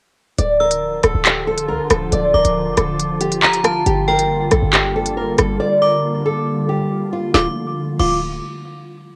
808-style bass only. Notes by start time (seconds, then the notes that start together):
0.38 D1
1.04 D1
1.15 D1
1.69 D2
1.80 D1
1.91 D1
2.12 D1
2.34 D1
2.45 D1
2.67 F1
2.78 D1
3.86 G1
4.52 A#1
4.62 G1
5.38 G1
7.34 D1
7.99 D1